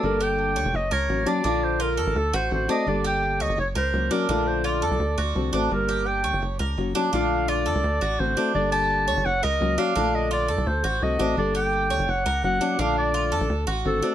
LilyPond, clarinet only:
\new Staff \with { instrumentName = "Clarinet" } { \time 4/4 \key g \minor \tempo 4 = 169 bes'8 g''4. ees''8 cis''4 d''8~ | d''8 c''8 bes'4 a'8 c''8 c''8 ees''8 | d''8 g''4 ees''8 cis''8 c''4 ais'8~ | ais'8 c''8 d''2~ d''8 r8 |
bes'4 g''4 r2 | f''4 d''2 c''4 | d''8 a''4. fis''8 ees''4 f''8~ | f''8 ees''8 d''4 c''4 ees''4 |
d''8 g''4. fis''4 fis''4 | f''8 d''4.~ d''16 r8. a'4 | }